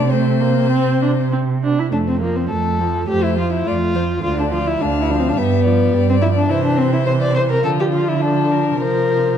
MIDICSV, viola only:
0, 0, Header, 1, 2, 480
1, 0, Start_track
1, 0, Key_signature, -1, "major"
1, 0, Tempo, 603015
1, 1538, Time_signature, 4, 2, 24, 8
1, 2004, Tempo, 569801
1, 6324, Tempo, 585938
1, 7742, End_track
2, 0, Start_track
2, 0, Title_t, "Viola"
2, 0, Program_c, 0, 41
2, 85, Note_on_c, 0, 57, 48
2, 327, Note_on_c, 0, 58, 55
2, 339, Note_off_c, 0, 57, 0
2, 563, Note_off_c, 0, 58, 0
2, 568, Note_on_c, 0, 60, 59
2, 807, Note_off_c, 0, 60, 0
2, 814, Note_on_c, 0, 62, 59
2, 878, Note_off_c, 0, 62, 0
2, 1056, Note_on_c, 0, 60, 54
2, 1120, Note_off_c, 0, 60, 0
2, 1302, Note_on_c, 0, 62, 60
2, 1427, Note_on_c, 0, 64, 54
2, 1439, Note_off_c, 0, 62, 0
2, 1529, Note_off_c, 0, 64, 0
2, 1533, Note_on_c, 0, 57, 40
2, 1764, Note_on_c, 0, 53, 31
2, 1776, Note_off_c, 0, 57, 0
2, 1995, Note_on_c, 0, 57, 28
2, 2008, Note_off_c, 0, 53, 0
2, 2243, Note_on_c, 0, 53, 33
2, 2256, Note_off_c, 0, 57, 0
2, 2477, Note_off_c, 0, 53, 0
2, 2482, Note_on_c, 0, 57, 36
2, 2721, Note_on_c, 0, 53, 31
2, 2733, Note_off_c, 0, 57, 0
2, 2968, Note_on_c, 0, 57, 33
2, 2980, Note_off_c, 0, 53, 0
2, 3211, Note_on_c, 0, 53, 34
2, 3224, Note_off_c, 0, 57, 0
2, 3445, Note_off_c, 0, 53, 0
2, 3450, Note_on_c, 0, 50, 45
2, 3699, Note_on_c, 0, 53, 38
2, 3712, Note_off_c, 0, 50, 0
2, 3931, Note_on_c, 0, 50, 36
2, 3944, Note_off_c, 0, 53, 0
2, 4179, Note_on_c, 0, 53, 43
2, 4192, Note_off_c, 0, 50, 0
2, 4409, Note_off_c, 0, 53, 0
2, 4414, Note_on_c, 0, 55, 43
2, 4650, Note_on_c, 0, 53, 38
2, 4663, Note_off_c, 0, 55, 0
2, 4886, Note_on_c, 0, 55, 41
2, 4898, Note_off_c, 0, 53, 0
2, 5123, Note_on_c, 0, 53, 43
2, 5136, Note_off_c, 0, 55, 0
2, 5353, Note_off_c, 0, 53, 0
2, 5358, Note_on_c, 0, 52, 49
2, 5804, Note_off_c, 0, 52, 0
2, 5836, Note_on_c, 0, 52, 37
2, 6311, Note_off_c, 0, 52, 0
2, 6317, Note_on_c, 0, 53, 41
2, 6784, Note_off_c, 0, 53, 0
2, 6789, Note_on_c, 0, 53, 35
2, 7262, Note_off_c, 0, 53, 0
2, 7275, Note_on_c, 0, 53, 42
2, 7742, Note_off_c, 0, 53, 0
2, 7742, End_track
0, 0, End_of_file